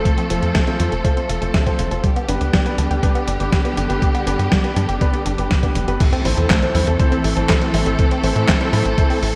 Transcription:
Already playing: string section F3 A3 A4
0.05 synth arpeggio sound A3, kick, closed hi-hat
0.18 synth arpeggio sound C4, closed hi-hat
0.30 analog synth bass F1, grand piano C4 F4 A4 C5, synth arpeggio sound F4, closed hi-hat
0.42 analog synth bass F2, synth arpeggio sound A4, closed hi-hat
0.55 synth arpeggio sound A3, kick, snare, closed hi-hat
0.67 grand piano C4 F4 A4 C5, synth arpeggio sound C4, closed hi-hat
0.80 analog synth bass F2, synth arpeggio sound F4, closed hi-hat
0.92 analog synth bass F1, synth arpeggio sound A4, closed hi-hat
1.04 synth arpeggio sound A3, grand piano C4 F4 A4 C5, kick, closed hi-hat
1.17 synth arpeggio sound C4, closed hi-hat
1.29 analog synth bass F1, synth arpeggio sound F4, closed hi-hat
1.42 analog synth bass F1, grand piano C4 F4 A4 C5, synth arpeggio sound A4, closed hi-hat
1.54 synth arpeggio sound A3, kick, snare, closed hi-hat
1.66 synth arpeggio sound C4, grand piano C4 F4 A4 C5, kick, closed hi-hat
1.79 analog synth bass F1, synth arpeggio sound F4, closed hi-hat
1.91 analog synth bass F1, grand piano C4 F4 A4 C5, synth arpeggio sound A4, closed hi-hat
2.03 string section D3 G3 G4, synth arpeggio sound G3, kick, closed hi-hat
2.16 synth arpeggio sound B3, closed hi-hat
2.28 analog synth bass G1, grand piano B3 D4 G4 B4, synth arpeggio sound D4, closed hi-hat
2.41 analog synth bass D2, synth arpeggio sound G4, closed hi-hat
2.53 synth arpeggio sound G3, kick, snare, closed hi-hat
2.66 synth arpeggio sound B3, grand piano B3 D4 G4 B4, closed hi-hat
2.78 analog synth bass D2, synth arpeggio sound D4, closed hi-hat
2.90 analog synth bass D2, synth arpeggio sound G4, closed hi-hat
3.03 synth arpeggio sound G3, grand piano B3 D4 G4 B4, kick, closed hi-hat
3.15 synth arpeggio sound B3, closed hi-hat
3.27 analog synth bass G1, synth arpeggio sound D4, closed hi-hat
3.40 analog synth bass G1, grand piano B3 D4 G4 B4, synth arpeggio sound G4, closed hi-hat
3.52 synth arpeggio sound G3, kick, snare, closed hi-hat
3.65 synth arpeggio sound B3, grand piano B3 D4 G4 B4, closed hi-hat
3.77 analog synth bass G1, synth arpeggio sound D4, closed hi-hat
3.89 analog synth bass G1, grand piano B3 D4 G4 B4, synth arpeggio sound G4, closed hi-hat
4.02 synth arpeggio sound G3, kick, closed hi-hat
4.14 synth arpeggio sound B3, closed hi-hat
4.27 analog synth bass G1, grand piano B3 D4 G4 B4, synth arpeggio sound D4, closed hi-hat
4.39 analog synth bass G2, synth arpeggio sound G4, closed hi-hat
4.51 synth arpeggio sound G3, kick, snare, closed hi-hat
4.64 synth arpeggio sound B3, grand piano B3 D4 G4 B4, closed hi-hat
4.76 analog synth bass G2, synth arpeggio sound D4, closed hi-hat
4.89 analog synth bass G1, synth arpeggio sound G4, closed hi-hat
5.01 synth arpeggio sound G3, grand piano B3 D4 G4 B4, kick, closed hi-hat
5.13 synth arpeggio sound B3, closed hi-hat
5.26 analog synth bass G1, synth arpeggio sound D4, closed hi-hat
5.38 analog synth bass G1, grand piano B3 D4 G4 B4, synth arpeggio sound G4, closed hi-hat
5.51 synth arpeggio sound G3, kick, snare, closed hi-hat
5.63 synth arpeggio sound B3, grand piano B3 D4 G4 B4, kick, closed hi-hat
5.75 analog synth bass F1, synth arpeggio sound D4, closed hi-hat
5.88 analog synth bass G1, grand piano B3 D4 G4 B4, synth arpeggio sound G4, closed hi-hat
6.00 string section E3 A3 C4 A4, synth arpeggio sound A3, kick, closed hi-hat, crash, impact
6.12 synth arpeggio sound C4, closed hi-hat
6.25 analog synth bass A1, grand piano C4 E4 A4 C5, synth arpeggio sound E4, open hi-hat
6.37 analog synth bass E2, synth arpeggio sound A4, closed hi-hat
6.50 synth arpeggio sound A3, kick, snare, clap, closed hi-hat
6.62 synth arpeggio sound C4, grand piano C4 E4 A4 C5, closed hi-hat
6.75 analog synth bass E2, synth arpeggio sound E4, open hi-hat
6.87 analog synth bass E2, synth arpeggio sound A4, closed hi-hat
7.00 synth arpeggio sound A3, grand piano C4 E4 A4 C5, kick, closed hi-hat
7.12 synth arpeggio sound C4, closed hi-hat
7.24 analog synth bass A1, synth arpeggio sound E4, open hi-hat
7.37 analog synth bass A1, grand piano C4 E4 A4 C5, synth arpeggio sound A4, closed hi-hat
7.49 synth arpeggio sound A3, kick, snare, clap, closed hi-hat
7.62 grand piano C4 E4 A4 C5, synth arpeggio sound C4, closed hi-hat
7.74 analog synth bass A1, synth arpeggio sound E4, open hi-hat
7.86 analog synth bass A1, grand piano C4 E4 A4 C5, synth arpeggio sound A4, closed hi-hat
7.99 synth arpeggio sound A3, kick, closed hi-hat
8.11 synth arpeggio sound C4, closed hi-hat
8.23 analog synth bass A1, grand piano C4 E4 A4 C5, synth arpeggio sound E4, open hi-hat
8.36 analog synth bass A2, synth arpeggio sound A4, closed hi-hat
8.48 synth arpeggio sound A3, kick, snare, clap, closed hi-hat
8.61 grand piano C4 E4 A4 C5, synth arpeggio sound C4, closed hi-hat
8.73 analog synth bass A2, synth arpeggio sound E4, open hi-hat
8.85 analog synth bass A1, synth arpeggio sound A4, closed hi-hat
8.98 synth arpeggio sound A3, grand piano C4 E4 A4 C5, kick, closed hi-hat
9.10 synth arpeggio sound C4, open hi-hat
9.22 analog synth bass A1, synth arpeggio sound E4, open hi-hat

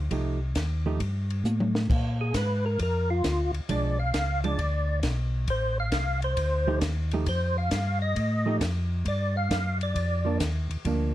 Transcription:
0.11 tonewheel organ C2, hollow-body jazz guitar F3 A3 D#4 G4, kick, ride
0.55 tonewheel organ D#2, kick, snare, hi-hat pedal, ride
0.86 hollow-body jazz guitar F3 A3 D#4 G4
1.00 tonewheel organ G2, kick, ride
1.30 ride
1.44 tonewheel organ A2, hi-hat pedal, high tom
1.60 mid tom
1.75 snare
1.89 tonewheel organ A#2, kick, crash
2.21 tonewheel organ G#4
2.34 tonewheel organ G#2 B4, kick, snare, hi-hat pedal, ride
2.66 tonewheel organ A#4
2.79 tonewheel organ F2 A#4, kick, ride
3.10 tonewheel organ F4
3.24 tonewheel organ D2, kick, snare, hi-hat pedal, ride
3.53 tonewheel organ D2, ride
3.69 tonewheel organ B1 D5, hollow-body jazz guitar F3 G#3 D4, kick, ride
3.99 tonewheel organ F5
4.14 tonewheel organ C#2, kick, snare, hi-hat pedal, ride
4.44 hollow-body jazz guitar F3 G#3 D4, tonewheel organ D5, ride
4.59 tonewheel organ D2, kick, ride
5.03 tonewheel organ B1, kick, snare, hi-hat pedal, ride
5.48 tonewheel organ A1 C5, kick, ride
5.80 tonewheel organ F5
5.92 tonewheel organ C2, kick, snare, hi-hat pedal, ride
6.22 tonewheel organ C5, ride
6.37 tonewheel organ D2, kick, ride
6.67 hollow-body jazz guitar F3 A3 D#4 G4
6.81 tonewheel organ D#2, kick, snare, hi-hat pedal, ride
7.11 hollow-body jazz guitar F3 A3 D#4 G4, ride
7.26 tonewheel organ F2 C5, kick, ride
7.58 tonewheel organ F5
7.71 tonewheel organ G2, kick, snare, hi-hat pedal, ride
8.02 tonewheel organ D#5
8.16 tonewheel organ A2, kick, ride
8.46 hollow-body jazz guitar F3 A3 D#4 G4
8.60 tonewheel organ F2, kick, snare, hi-hat pedal, ride
9.05 tonewheel organ G2 D5, kick, ride
9.37 tonewheel organ F5
9.51 tonewheel organ F#2, kick, snare, hi-hat pedal, ride
9.81 tonewheel organ D5, ride
9.95 tonewheel organ F2, kick, ride
10.25 hollow-body jazz guitar F3 A#3 D4
10.40 tonewheel organ D#2, kick, snare, hi-hat pedal, ride
10.70 tonewheel organ D#2, ride
10.85 tonewheel organ D2, hollow-body jazz guitar F3 A#3 D4, kick, ride

